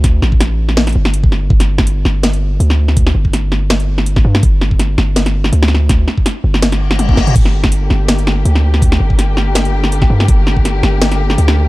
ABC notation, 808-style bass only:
X:1
M:4/4
L:1/8
Q:"Swing 16ths" 1/4=164
K:Gm
V:1 name="808-style bass" clef=bass
D,, A,,,4 G,,,3 | G,,,3 G,,,3 D,,2- | D,, G,,,6 G,, | G,,,3 G,,,3 D,,2- |
D,, z2 G,,,4- G,,, | G,,,3 G,,,3 D,,2- | D,, G,,,6 G,, | G,,,3 G,,,3 D,,2 |]